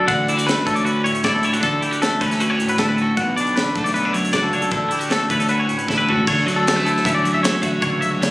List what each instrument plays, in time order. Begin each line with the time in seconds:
Already playing: clean electric guitar D4 F#4
0.07 fingered electric bass D2, clean electric guitar D3 F#5, kick, closed hi-hat
0.28 clean electric guitar E4 D5, closed hi-hat
0.37 clean electric guitar F#4, closed hi-hat
0.46 clean electric guitar A3 B4, snare, closed hi-hat
0.66 fingered electric bass D2, clean electric guitar C#4 A4, kick, closed hi-hat
0.75 clean electric guitar D5, closed hi-hat
0.85 clean electric guitar F#4 B4, closed hi-hat
1.04 clean electric guitar A2 C#5, closed hi-hat
1.15 closed hi-hat
1.24 fingered electric bass D2, clean electric guitar E4 D5, kick, snare, closed hi-hat
1.34 clean electric guitar A4
1.43 clean electric guitar E4 C#5, closed hi-hat
1.53 clean electric guitar F#4 A4, closed hi-hat
1.60 fingered electric bass D2, clean electric guitar D3 A4, kick, closed hi-hat
1.81 clean electric guitar E4 G4, closed hi-hat
1.91 clean electric guitar F#4, closed hi-hat
2.02 clean electric guitar A3 A4, snare, closed hi-hat
2.21 fingered electric bass D2, clean electric guitar C#4 B4, kick, closed hi-hat
2.31 clean electric guitar A4, snare, closed hi-hat
2.40 clean electric guitar F#4 B4, closed hi-hat
2.50 clean electric guitar C#5
2.60 clean electric guitar A2, closed hi-hat
2.68 clean electric guitar B4, closed hi-hat
2.78 fingered electric bass D2, clean electric guitar E4 A4, kick, snare, closed hi-hat
2.89 clean electric guitar B4
2.97 clean electric guitar A4, closed hi-hat
3.02 clean electric guitar F#4
3.17 fingered electric bass B1, clean electric guitar B2 F#5, kick, closed hi-hat
3.36 clean electric guitar D5, closed hi-hat
3.41 clean electric guitar D4
3.47 closed hi-hat
3.56 clean electric guitar D3 B4, snare, closed hi-hat
3.75 fingered electric bass B1, clean electric guitar A3 A4, kick, closed hi-hat
3.84 clean electric guitar D5, snare, closed hi-hat
3.94 clean electric guitar B3 B4, closed hi-hat
4.05 clean electric guitar D4
4.13 clean electric guitar F#2 C#5, closed hi-hat
4.25 closed hi-hat
4.33 fingered electric bass C#2, clean electric guitar F#4 D5, kick, snare, closed hi-hat
4.43 clean electric guitar A4
4.53 clean electric guitar D4 C#5, closed hi-hat
4.62 clean electric guitar A4, closed hi-hat
4.71 fingered electric bass D2, clean electric guitar D3 A4, kick, closed hi-hat
4.89 clean electric guitar E4 G4, closed hi-hat
4.99 clean electric guitar F#4, closed hi-hat
5.09 clean electric guitar A3 A4, snare, closed hi-hat
5.30 fingered electric bass D2, clean electric guitar C#4 B4, kick, closed hi-hat
5.39 clean electric guitar A4, snare, closed hi-hat
5.49 clean electric guitar F#4 B4, closed hi-hat
5.59 clean electric guitar C#5
5.67 clean electric guitar A2, closed hi-hat
5.78 clean electric guitar B4, closed hi-hat
5.88 fingered electric bass D2, clean electric guitar E4 A4, kick, snare
5.98 clean electric guitar B4
6.09 clean electric guitar F#4 A4, floor tom
6.27 fingered electric bass D2, clean electric guitar D3 C#5, kick, crash
6.46 fingered electric bass D2, clean electric guitar F#3 D5, closed hi-hat
6.56 clean electric guitar A4
6.67 clean electric guitar G3, snare, closed hi-hat
6.76 clean electric guitar A3 B4
6.86 clean electric guitar E4 A4, closed hi-hat
6.97 snare
7.05 fingered electric bass D3, clean electric guitar C#4 E5, kick, closed hi-hat
7.15 clean electric guitar D5
7.24 clean electric guitar F#3, closed hi-hat
7.34 clean electric guitar E5
7.43 clean electric guitar A3 C#5, snare, closed hi-hat
7.62 fingered electric bass D3, clean electric guitar F#4 E5, kick, closed hi-hat
7.73 clean electric guitar C#5
7.81 fingered electric bass C#2, clean electric guitar D3 C#5, kick, closed hi-hat
8.00 clean electric guitar F#3 E5, closed hi-hat
8.11 clean electric guitar C#5
8.21 clean electric guitar A3, snare, closed hi-hat